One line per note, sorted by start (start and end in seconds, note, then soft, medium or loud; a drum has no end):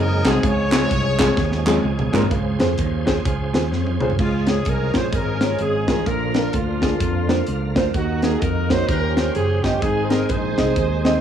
0.00 0.21 F#1 loud
0.00 0.42 F#3 medium
0.00 2.28 G#3 medium
0.00 0.40 C4 medium
0.00 0.40 D#4 medium
0.00 0.42 D#4 medium
0.00 2.28 G#4 medium
0.00 0.26 A#4 loud
0.25 0.41 C2 medium
0.25 0.35 G#3 medium
0.25 0.35 C4 medium
0.25 0.35 D#4 medium
0.25 0.35 F#4 medium
0.25 0.36 G#4 medium
0.25 0.43 G#4 loud
0.25 kick medium
0.25 snare loud
0.25 clap medium
0.25 closed hi-hat medium
0.43 0.83 C#2 loud
0.43 1.15 C#3 medium
0.43 2.29 F3 medium
0.43 2.29 C#4 medium
0.43 1.80 F4 medium
0.43 1.80 G#4 medium
0.43 1.85 C#5 loud
0.43 kick loud
0.43 closed hi-hat medium
0.71 0.81 G#3 medium
0.71 0.81 C4 medium
0.71 0.82 C#4 medium
0.71 0.82 F4 medium
0.71 0.82 G#4 medium
0.71 snare loud
0.71 clap loud
0.71 closed hi-hat medium
0.91 1.30 C2 medium
0.91 kick medium
0.91 closed hi-hat medium
1.19 1.28 G#3 medium
1.19 1.29 C4 medium
1.19 1.29 C#4 medium
1.19 1.29 F4 medium
1.19 1.29 G#4 loud
1.19 kick medium
1.19 snare loud
1.19 clap loud
1.19 closed hi-hat medium
1.37 1.77 D#2 loud
1.37 kick loud
1.37 snare medium
1.52 snare medium
1.66 1.75 G#3 medium
1.66 1.76 C4 medium
1.66 1.76 C#4 medium
1.66 1.76 F4 medium
1.66 1.76 G#4 medium
1.66 clap loud
1.66 high tom medium
1.84 2.08 C#2 loud
1.99 mid tom medium
2.12 2.28 A#1 medium
2.12 2.22 G#3 medium
2.12 2.22 C4 medium
2.12 2.22 C#4 medium
2.12 2.23 F4 medium
2.12 2.23 A#4 loud
2.12 clap medium
2.12 floor tom loud
2.22 floor tom loud
2.30 2.55 C#2 loud
2.30 3.03 C#3 medium
2.30 4.17 F3 medium
2.30 4.16 C#4 medium
2.30 4.17 G#4 medium
2.30 4.17 C5 medium
2.30 kick loud
2.30 closed hi-hat medium
2.59 2.75 F2 medium
2.59 2.69 C#4 medium
2.59 2.69 F4 medium
2.59 2.69 G#4 medium
2.59 2.70 C5 medium
2.59 snare loud
2.59 closed hi-hat medium
2.78 3.18 D#2 medium
2.78 kick loud
2.78 closed hi-hat medium
3.06 3.16 C#4 medium
3.06 3.16 F4 medium
3.06 3.16 G#4 medium
3.06 3.24 G#4 medium
3.06 3.24 C5 medium
3.06 3.17 C5 medium
3.06 kick medium
3.06 snare loud
3.06 closed hi-hat medium
3.25 3.50 C#2 medium
3.25 3.52 F4 medium
3.25 3.52 G#4 medium
3.25 kick loud
3.25 closed hi-hat medium
3.53 3.72 D#2 medium
3.53 3.63 C#4 medium
3.53 4.16 C#4 medium
3.53 4.15 F4 medium
3.53 3.63 F4 medium
3.53 3.63 G#4 medium
3.53 3.64 C5 medium
3.53 snare loud
3.53 closed hi-hat medium
3.72 3.96 F2 loud
3.72 snare soft
3.87 high tom medium
4.00 4.16 C#2 medium
4.00 4.10 C#4 medium
4.00 4.10 F4 medium
4.00 4.11 G#4 medium
4.00 4.11 C5 medium
4.00 mid tom medium
4.10 floor tom medium
4.19 4.59 C#2 loud
4.19 4.91 C#3 medium
4.19 6.04 F3 medium
4.19 6.05 G#3 soft
4.19 5.09 G#3 medium
4.19 6.05 C#4 medium
4.19 5.09 C#4 medium
4.19 4.46 F4 medium
4.19 4.51 F4 medium
4.19 6.05 G#4 medium
4.19 kick loud
4.19 crash medium
4.47 4.57 C#4 medium
4.47 4.57 F4 medium
4.47 4.66 G#4 medium
4.47 4.57 G#4 medium
4.47 4.71 G#4 medium
4.47 4.58 C#5 medium
4.47 snare loud
4.47 closed hi-hat medium
4.65 4.90 C2 medium
4.65 4.96 A#4 medium
4.65 kick loud
4.65 closed hi-hat medium
4.69 4.96 A#4 loud
4.94 5.10 A#1 medium
4.94 5.04 C#4 medium
4.94 5.04 F4 medium
4.94 5.05 G#4 medium
4.94 5.12 C5 medium
4.94 5.05 C5 medium
4.94 5.04 C5 medium
4.94 kick medium
4.94 snare loud
4.94 closed hi-hat medium
5.13 5.53 G#1 medium
5.13 6.03 C#4 medium
5.13 6.03 F4 medium
5.13 5.60 A#4 loud
5.13 5.57 A#4 medium
5.13 kick loud
5.13 closed hi-hat medium
5.41 5.51 C#4 medium
5.41 5.51 F4 medium
5.41 5.51 G#4 medium
5.41 5.52 C#5 medium
5.41 snare loud
5.41 closed hi-hat medium
5.59 5.84 G#1 loud
5.59 5.87 G#4 medium
5.59 5.87 G#4 loud
5.59 closed hi-hat medium
5.88 6.03 A1 medium
5.88 5.97 C#4 medium
5.88 5.98 F4 medium
5.88 6.05 G#4 medium
5.88 5.98 G#4 medium
5.88 6.06 G#4 medium
5.88 5.98 A#4 medium
5.88 kick medium
5.88 snare loud
5.88 closed hi-hat medium
6.05 6.46 A#1 loud
6.05 6.78 A#2 medium
6.05 7.92 D3 medium
6.05 7.92 F3 medium
6.05 8.85 A#3 medium
6.05 6.53 D4 medium
6.05 7.92 F4 medium
6.05 6.53 F4 medium
6.05 6.34 A#4 loud
6.05 6.35 A#4 medium
6.05 kick loud
6.05 closed hi-hat medium
6.34 6.45 A#3 medium
6.34 6.45 D4 medium
6.34 6.45 F4 medium
6.34 6.45 A#4 medium
6.34 6.53 A#4 loud
6.34 6.57 A#4 medium
6.34 snare loud
6.34 closed hi-hat medium
6.53 6.94 D2 loud
6.53 7.72 A#3 medium
6.53 7.73 D4 medium
6.53 7.76 F4 medium
6.53 7.77 F4 medium
6.53 kick medium
6.53 closed hi-hat medium
6.81 6.91 A#3 medium
6.81 6.91 D4 medium
6.81 6.92 F4 medium
6.81 6.92 G#4 medium
6.81 kick medium
6.81 snare loud
6.81 closed hi-hat medium
7.00 7.40 F2 medium
7.00 kick loud
7.00 closed hi-hat medium
7.28 7.38 A#3 medium
7.28 7.38 D4 medium
7.28 7.39 F4 medium
7.28 7.39 C5 medium
7.28 snare loud
7.28 closed hi-hat medium
7.47 7.72 C#2 medium
7.47 closed hi-hat medium
7.75 7.91 D2 medium
7.75 7.85 A#3 medium
7.75 7.85 D4 medium
7.75 7.86 F4 medium
7.75 7.86 C5 loud
7.75 kick medium
7.75 snare loud
7.75 closed hi-hat medium
7.94 8.34 D#2 loud
7.94 8.87 D#3 medium
7.94 8.66 D#3 medium
7.94 8.84 A#3 medium
7.94 8.84 D#4 medium
7.94 8.87 F#4 medium
7.94 8.21 F#4 medium
7.94 8.25 F#4 medium
7.94 kick loud
7.94 closed hi-hat medium
8.22 8.32 A#3 medium
8.22 8.33 D#4 medium
8.22 8.33 F#4 medium
8.22 8.41 G#4 medium
8.22 8.43 G#4 medium
8.22 8.33 A#4 medium
8.22 snare loud
8.22 closed hi-hat medium
8.39 8.82 F2 medium
8.39 8.69 A#4 medium
8.39 8.72 A#4 loud
8.39 kick loud
8.39 closed hi-hat medium
8.69 8.80 A#3 medium
8.69 8.80 D#4 medium
8.69 8.80 F#4 medium
8.69 8.88 C5 loud
8.69 8.87 C5 medium
8.69 8.80 C#5 medium
8.69 kick medium
8.69 snare loud
8.69 closed hi-hat medium
8.87 9.28 D#2 loud
8.87 9.60 D#3 medium
8.87 9.81 F3 medium
8.87 9.81 C#4 medium
8.87 9.79 C#4 medium
8.87 9.81 G4 medium
8.87 9.60 G4 medium
8.87 9.31 A#4 loud
8.87 9.13 A#4 loud
8.87 11.21 C5 medium
8.87 kick loud
8.87 closed hi-hat medium
9.14 9.26 C#4 medium
9.14 9.27 F4 medium
9.14 9.27 G4 medium
9.14 9.32 A#4 medium
9.14 snare loud
9.14 closed hi-hat medium
9.19 9.27 C5 medium
9.33 9.60 F#1 loud
9.33 9.61 G#4 loud
9.33 9.65 G#4 loud
9.33 closed hi-hat medium
9.62 9.79 G1 loud
9.62 9.73 C#4 medium
9.62 9.74 F4 medium
9.62 9.81 G4 medium
9.62 9.84 G4 medium
9.62 9.74 G4 medium
9.62 kick medium
9.62 snare loud
9.62 closed hi-hat medium
9.66 9.74 D#5 medium
9.80 10.22 G#1 medium
9.80 10.54 G#2 medium
9.80 11.21 D#3 medium
9.80 11.21 G#3 medium
9.80 10.72 C4 medium
9.80 10.29 D#4 medium
9.80 10.10 G#4 medium
9.80 11.21 G#4 medium
9.80 10.06 G#4 loud
9.80 kick loud
9.80 closed hi-hat medium
10.05 10.27 A#4 medium
10.05 10.12 C5 medium
10.10 10.20 C4 medium
10.10 10.20 D#4 medium
10.10 10.21 G#4 medium
10.10 10.28 A#4 medium
10.10 10.21 C5 medium
10.10 snare loud
10.10 closed hi-hat medium
10.28 10.54 A#1 medium
10.28 11.21 D#4 medium
10.28 11.21 G#4 medium
10.28 11.21 C5 medium
10.28 11.21 C5 loud
10.28 kick medium
10.28 closed hi-hat medium
10.58 10.74 C2 medium
10.58 10.67 C4 medium
10.58 10.67 D#4 medium
10.58 10.68 G#4 medium
10.58 10.68 D#5 medium
10.58 kick medium
10.58 snare loud
10.58 closed hi-hat medium
10.76 11.16 D#2 loud
10.76 kick loud
10.76 closed hi-hat medium
11.05 11.14 C4 medium
11.05 11.14 D#4 medium
11.05 11.15 G#4 medium
11.05 11.15 D#5 medium
11.05 snare loud
11.05 closed hi-hat medium